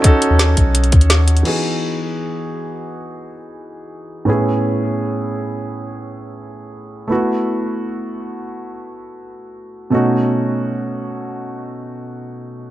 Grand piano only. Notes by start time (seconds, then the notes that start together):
Already playing: C#4 D#4 F#4 A4
0.02 C#4 D#4 F#4
0.06 A4
1.43 E3 B3 D#4 F#4
1.47 G#4
4.25 A2 B3 C#4 E4
4.30 G#4
7.08 A3 B3 E4
7.12 F#4
9.90 B2 A3 C#4 D#4
9.95 F#4